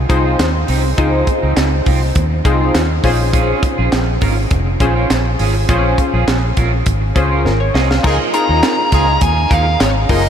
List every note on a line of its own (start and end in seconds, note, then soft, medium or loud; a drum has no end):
0.09 0.34 C2 medium
0.09 0.24 F3 medium
0.09 0.24 C4 medium
0.09 0.45 D#4 medium
0.09 0.24 D#4 medium
0.09 0.45 F4 medium
0.09 0.46 G#4 medium
0.09 0.46 C5 loud
0.09 kick medium
0.09 closed hi-hat medium
0.25 0.36 F3 medium
0.25 0.36 C4 medium
0.25 0.35 F4 medium
0.39 0.63 D#2 medium
0.39 snare loud
0.39 clap medium
0.39 closed hi-hat loud
0.54 muted clean electric guitar stroke soft
0.68 0.93 C2 medium
0.68 0.82 F3 medium
0.68 0.83 C4 medium
0.68 0.82 D#4 loud
0.68 open hi-hat medium
0.84 muted clean electric guitar stroke soft
0.97 1.22 C#2 loud
0.97 1.25 F3 medium
0.97 1.25 C4 medium
0.97 1.46 D#4 medium
0.97 1.26 D#4 loud
0.97 1.46 F4 medium
0.97 1.46 G#4 medium
0.97 1.46 C5 medium
0.97 kick loud
0.97 closed hi-hat medium
1.27 muted clean electric guitar stroke soft
1.27 kick loud
1.27 closed hi-hat medium
1.42 1.54 C#2 loud
1.42 1.53 F3 soft
1.42 1.53 C4 medium
1.42 1.53 D#4 medium
1.57 1.81 C#2 medium
1.57 snare loud
1.57 clap medium
1.57 closed hi-hat medium
1.72 muted clean electric guitar stroke medium
1.85 2.11 C2 medium
1.85 2.00 F3 medium
1.85 2.00 C4 medium
1.85 2.01 F4 medium
1.85 kick medium
1.85 open hi-hat medium
2.01 muted clean electric guitar stroke soft
2.15 2.40 D#2 loud
2.15 muted clean electric guitar stroke soft
2.15 kick loud
2.15 closed hi-hat medium
2.31 muted clean electric guitar stroke soft
2.44 2.69 C2 medium
2.44 2.59 F3 medium
2.44 2.59 C4 medium
2.44 2.81 D#4 medium
2.44 2.60 D#4 medium
2.44 2.81 F4 medium
2.44 2.81 G#4 medium
2.44 2.81 C5 medium
2.44 kick medium
2.44 closed hi-hat medium
2.61 2.71 F3 soft
2.61 2.71 C4 medium
2.61 2.70 F4 medium
2.75 2.99 D#2 medium
2.75 snare loud
2.75 clap medium
2.75 closed hi-hat loud
2.90 muted clean electric guitar stroke medium
3.04 3.52 A#1 loud
3.04 3.98 C#4 medium
3.04 3.18 C#4 medium
3.04 3.98 F4 medium
3.04 3.19 F4 medium
3.04 3.99 G#4 medium
3.04 3.19 G#4 loud
3.04 3.99 C5 loud
3.04 kick medium
3.04 open hi-hat medium
3.20 muted clean electric guitar stroke soft
3.33 3.60 C#4 loud
3.33 3.61 F4 loud
3.33 3.61 G#4 medium
3.33 kick loud
3.33 closed hi-hat medium
3.62 muted clean electric guitar stroke soft
3.62 kick medium
3.62 closed hi-hat medium
3.78 3.90 A#1 medium
3.78 3.89 C#4 medium
3.78 3.88 F4 medium
3.78 3.88 G#4 medium
3.92 4.17 A#1 medium
3.92 snare loud
3.92 clap medium
3.92 closed hi-hat medium
4.07 muted clean electric guitar stroke soft
4.21 4.46 G#1 medium
4.21 4.35 C#4 medium
4.21 4.36 F4 medium
4.21 4.36 A#4 medium
4.21 kick medium
4.21 open hi-hat medium
4.36 muted clean electric guitar stroke soft
4.50 4.75 F1 medium
4.50 muted clean electric guitar stroke soft
4.50 kick loud
4.50 closed hi-hat medium
4.66 muted clean electric guitar stroke soft
4.80 5.04 A#1 medium
4.80 4.94 C#4 medium
4.80 5.16 C#4 medium
4.80 5.16 F4 medium
4.80 4.95 F4 medium
4.80 5.17 G#4 medium
4.80 4.95 G#4 medium
4.80 5.17 C5 loud
4.80 kick medium
4.80 closed hi-hat medium
4.95 5.06 C#4 soft
4.95 5.06 F4 medium
4.95 5.06 A#4 medium
5.10 5.34 A#1 medium
5.10 snare loud
5.10 clap medium
5.10 closed hi-hat loud
5.25 muted clean electric guitar stroke soft
5.39 5.64 G#1 medium
5.39 5.53 C#4 medium
5.39 5.54 F4 medium
5.39 5.53 G#4 loud
5.39 open hi-hat medium
5.55 muted clean electric guitar stroke soft
5.68 5.93 A#1 loud
5.68 5.96 C#4 medium
5.68 6.17 C#4 medium
5.68 5.96 F4 medium
5.68 6.17 F4 medium
5.68 6.17 G#4 medium
5.68 5.96 G#4 medium
5.68 6.17 C5 loud
5.68 kick loud
5.68 closed hi-hat medium
5.98 muted clean electric guitar stroke soft
5.98 kick medium
5.98 closed hi-hat medium
6.14 6.25 A#1 loud
6.14 6.24 C#4 soft
6.14 6.24 F4 medium
6.14 6.24 G#4 medium
6.28 6.52 A#1 medium
6.28 snare loud
6.28 clap medium
6.28 closed hi-hat medium
6.43 muted clean electric guitar stroke soft
6.57 6.81 A#1 medium
6.57 6.71 C#4 medium
6.57 6.72 F4 medium
6.57 6.72 A#4 medium
6.57 kick medium
6.57 closed hi-hat medium
6.73 muted clean electric guitar stroke soft
6.86 7.11 G#1 loud
6.86 muted clean electric guitar stroke soft
6.86 kick loud
6.86 closed hi-hat medium
7.02 muted clean electric guitar stroke soft
7.15 7.46 C#2 medium
7.15 7.29 C#4 medium
7.15 7.51 C#4 medium
7.15 7.30 F4 medium
7.15 7.52 F4 medium
7.15 7.52 G#4 medium
7.15 7.30 G#4 medium
7.15 7.46 C5 medium
7.15 kick medium
7.15 closed hi-hat medium
7.31 7.42 C#4 medium
7.31 7.41 F4 medium
7.31 7.41 A#4 medium
7.45 7.69 G#1 loud
7.45 7.60 A#4 medium
7.45 snare medium
7.60 7.74 C#5 medium
7.60 muted clean electric guitar stroke soft
7.74 7.99 C2 medium
7.74 7.88 C#4 medium
7.74 7.89 F4 medium
7.74 7.89 G#4 loud
7.74 7.89 D#5 medium
7.74 snare medium
7.90 8.18 F5 medium
7.90 muted clean electric guitar stroke soft
7.90 snare medium
8.03 8.17 C#2 loud
8.03 8.31 F3 medium
8.03 8.31 A#3 medium
8.03 8.16 D#4 medium
8.03 8.15 D#4 loud
8.03 8.32 D#4 medium
8.03 8.16 F4 medium
8.03 8.15 F4 loud
8.03 8.16 G#4 medium
8.03 8.15 G#4 loud
8.03 8.16 A#4 loud
8.03 kick loud
8.03 crash medium
8.33 8.81 D#4 medium
8.33 8.81 F4 medium
8.33 8.82 G#4 medium
8.33 8.82 A#4 medium
8.33 9.22 A#5 loud
8.33 muted clean electric guitar stroke soft
8.33 closed hi-hat medium
8.49 8.60 D#2 loud
8.49 8.60 F3 medium
8.49 8.59 A#3 medium
8.49 8.59 D#4 medium
8.63 snare loud
8.63 clap medium
8.63 closed hi-hat medium
8.78 muted clean electric guitar stroke soft
8.92 9.16 C#2 medium
8.92 9.06 F3 medium
8.92 9.07 A#3 medium
8.92 9.11 D#4 medium
8.92 9.11 F4 loud
8.92 9.07 F4 medium
8.92 9.11 G#4 loud
8.92 kick medium
8.92 closed hi-hat medium
9.07 muted clean electric guitar stroke soft
9.21 9.46 D#2 loud
9.21 9.52 G#5 loud
9.21 muted clean electric guitar stroke soft
9.21 kick loud
9.21 closed hi-hat loud
9.37 muted clean electric guitar stroke soft
9.50 9.75 D#2 medium
9.50 9.65 F3 medium
9.50 9.65 A#3 loud
9.50 9.65 D#4 loud
9.50 9.81 F5 loud
9.50 kick loud
9.50 closed hi-hat medium
9.66 muted clean electric guitar stroke soft
9.80 10.05 G#1 medium
9.80 9.88 C#5 medium
9.80 snare loud
9.80 clap medium
9.80 closed hi-hat loud
9.96 muted clean electric guitar stroke soft
10.09 10.29 F#1 medium
10.09 10.24 F3 medium
10.09 10.24 A#3 loud
10.09 10.22 D#4 medium
10.09 10.24 D#4 loud
10.09 10.22 F4 medium
10.09 10.22 G#4 medium
10.09 10.22 A#4 medium
10.09 10.29 D#5 medium
10.09 kick medium
10.09 open hi-hat medium
10.25 muted clean electric guitar stroke medium